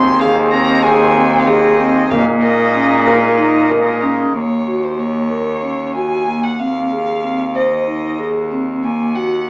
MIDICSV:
0, 0, Header, 1, 6, 480
1, 0, Start_track
1, 0, Tempo, 639659
1, 1587, Time_signature, 7, 3, 24, 8
1, 7127, End_track
2, 0, Start_track
2, 0, Title_t, "Violin"
2, 0, Program_c, 0, 40
2, 0, Note_on_c, 0, 84, 89
2, 134, Note_off_c, 0, 84, 0
2, 150, Note_on_c, 0, 77, 90
2, 258, Note_off_c, 0, 77, 0
2, 386, Note_on_c, 0, 82, 93
2, 624, Note_on_c, 0, 80, 92
2, 635, Note_off_c, 0, 82, 0
2, 1054, Note_on_c, 0, 77, 60
2, 1065, Note_off_c, 0, 80, 0
2, 1105, Note_on_c, 0, 75, 87
2, 1116, Note_off_c, 0, 77, 0
2, 1574, Note_off_c, 0, 75, 0
2, 1579, Note_on_c, 0, 77, 71
2, 1689, Note_off_c, 0, 77, 0
2, 1824, Note_on_c, 0, 75, 87
2, 2274, Note_off_c, 0, 75, 0
2, 2295, Note_on_c, 0, 75, 69
2, 2990, Note_off_c, 0, 75, 0
2, 3276, Note_on_c, 0, 73, 54
2, 3631, Note_on_c, 0, 72, 54
2, 3642, Note_off_c, 0, 73, 0
2, 3747, Note_on_c, 0, 73, 66
2, 3758, Note_off_c, 0, 72, 0
2, 4464, Note_off_c, 0, 73, 0
2, 4468, Note_on_c, 0, 80, 79
2, 4827, Note_on_c, 0, 78, 67
2, 4838, Note_off_c, 0, 80, 0
2, 4945, Note_on_c, 0, 77, 66
2, 4956, Note_off_c, 0, 78, 0
2, 5670, Note_on_c, 0, 75, 58
2, 5682, Note_off_c, 0, 77, 0
2, 6151, Note_off_c, 0, 75, 0
2, 6631, Note_on_c, 0, 80, 61
2, 6866, Note_on_c, 0, 78, 64
2, 6877, Note_off_c, 0, 80, 0
2, 7127, Note_off_c, 0, 78, 0
2, 7127, End_track
3, 0, Start_track
3, 0, Title_t, "Vibraphone"
3, 0, Program_c, 1, 11
3, 0, Note_on_c, 1, 60, 81
3, 108, Note_off_c, 1, 60, 0
3, 147, Note_on_c, 1, 68, 68
3, 347, Note_off_c, 1, 68, 0
3, 391, Note_on_c, 1, 60, 71
3, 588, Note_off_c, 1, 60, 0
3, 626, Note_on_c, 1, 68, 69
3, 826, Note_off_c, 1, 68, 0
3, 864, Note_on_c, 1, 60, 61
3, 1064, Note_off_c, 1, 60, 0
3, 1105, Note_on_c, 1, 68, 82
3, 1304, Note_off_c, 1, 68, 0
3, 1343, Note_on_c, 1, 60, 72
3, 1543, Note_off_c, 1, 60, 0
3, 1584, Note_on_c, 1, 58, 78
3, 1784, Note_off_c, 1, 58, 0
3, 1819, Note_on_c, 1, 70, 70
3, 2020, Note_off_c, 1, 70, 0
3, 2062, Note_on_c, 1, 61, 72
3, 2262, Note_off_c, 1, 61, 0
3, 2297, Note_on_c, 1, 70, 69
3, 2499, Note_off_c, 1, 70, 0
3, 2533, Note_on_c, 1, 63, 67
3, 2737, Note_off_c, 1, 63, 0
3, 2773, Note_on_c, 1, 70, 73
3, 2977, Note_off_c, 1, 70, 0
3, 3017, Note_on_c, 1, 61, 68
3, 3219, Note_off_c, 1, 61, 0
3, 3258, Note_on_c, 1, 58, 60
3, 3460, Note_off_c, 1, 58, 0
3, 3503, Note_on_c, 1, 66, 47
3, 3703, Note_off_c, 1, 66, 0
3, 3737, Note_on_c, 1, 58, 55
3, 3939, Note_off_c, 1, 58, 0
3, 3979, Note_on_c, 1, 70, 52
3, 4181, Note_off_c, 1, 70, 0
3, 4219, Note_on_c, 1, 61, 46
3, 4421, Note_off_c, 1, 61, 0
3, 4465, Note_on_c, 1, 66, 51
3, 4665, Note_off_c, 1, 66, 0
3, 4704, Note_on_c, 1, 58, 57
3, 4905, Note_off_c, 1, 58, 0
3, 4947, Note_on_c, 1, 60, 61
3, 5147, Note_off_c, 1, 60, 0
3, 5190, Note_on_c, 1, 68, 46
3, 5388, Note_off_c, 1, 68, 0
3, 5427, Note_on_c, 1, 60, 58
3, 5627, Note_off_c, 1, 60, 0
3, 5664, Note_on_c, 1, 72, 63
3, 5866, Note_off_c, 1, 72, 0
3, 5905, Note_on_c, 1, 63, 49
3, 6107, Note_off_c, 1, 63, 0
3, 6144, Note_on_c, 1, 68, 55
3, 6347, Note_off_c, 1, 68, 0
3, 6389, Note_on_c, 1, 60, 61
3, 6590, Note_off_c, 1, 60, 0
3, 6627, Note_on_c, 1, 58, 64
3, 6828, Note_off_c, 1, 58, 0
3, 6868, Note_on_c, 1, 66, 51
3, 7070, Note_off_c, 1, 66, 0
3, 7127, End_track
4, 0, Start_track
4, 0, Title_t, "Harmonium"
4, 0, Program_c, 2, 20
4, 0, Note_on_c, 2, 51, 68
4, 0, Note_on_c, 2, 60, 68
4, 0, Note_on_c, 2, 68, 82
4, 1570, Note_off_c, 2, 68, 0
4, 1571, Note_off_c, 2, 60, 0
4, 1573, Note_off_c, 2, 51, 0
4, 1586, Note_on_c, 2, 58, 71
4, 1588, Note_on_c, 2, 63, 78
4, 1589, Note_on_c, 2, 56, 66
4, 3248, Note_off_c, 2, 58, 0
4, 3249, Note_off_c, 2, 63, 0
4, 3250, Note_off_c, 2, 56, 0
4, 7127, End_track
5, 0, Start_track
5, 0, Title_t, "Cello"
5, 0, Program_c, 3, 42
5, 0, Note_on_c, 3, 39, 95
5, 1584, Note_on_c, 3, 46, 86
5, 1595, Note_off_c, 3, 39, 0
5, 3234, Note_off_c, 3, 46, 0
5, 3255, Note_on_c, 3, 39, 63
5, 4948, Note_off_c, 3, 39, 0
5, 4948, Note_on_c, 3, 39, 63
5, 6634, Note_off_c, 3, 39, 0
5, 6634, Note_on_c, 3, 39, 63
5, 7127, Note_off_c, 3, 39, 0
5, 7127, End_track
6, 0, Start_track
6, 0, Title_t, "Frame drum"
6, 158, Note_on_c, 9, 64, 17
6, 233, Note_off_c, 9, 64, 0
6, 635, Note_on_c, 9, 64, 43
6, 710, Note_off_c, 9, 64, 0
6, 1106, Note_on_c, 9, 64, 43
6, 1181, Note_off_c, 9, 64, 0
6, 1585, Note_on_c, 9, 64, 55
6, 1660, Note_off_c, 9, 64, 0
6, 2069, Note_on_c, 9, 64, 19
6, 2144, Note_off_c, 9, 64, 0
6, 2308, Note_on_c, 9, 64, 50
6, 2383, Note_off_c, 9, 64, 0
6, 2549, Note_on_c, 9, 64, 18
6, 2624, Note_off_c, 9, 64, 0
6, 2787, Note_on_c, 9, 64, 46
6, 2862, Note_off_c, 9, 64, 0
6, 7127, End_track
0, 0, End_of_file